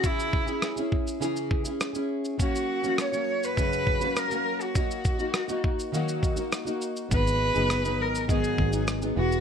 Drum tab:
SH |xx-xxx-xxx-xxx-x|xx-xxx-xxx-xxx-x|xxxxxx-xxxxxxxxx|xx-xxx-xxx-xxx-x|
SD |----r-------r---|----r-------r---|----r-------r---|----r-------r---|
BD |o-o---o---o-----|o-------o-o-----|o-o---o---o-----|o-------o-o-----|